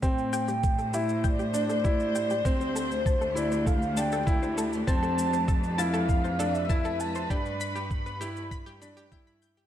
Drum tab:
SH |xxxxxxxxxxxxxxxx|xxxxxxxxxxxxxxxx|xxxxxxxxxxxxxxxx|xxxxxxxxxxxxxxxx|
BD |o---o---o---o---|o---o---o---o---|o---o---o---o---|o---o---o---o---|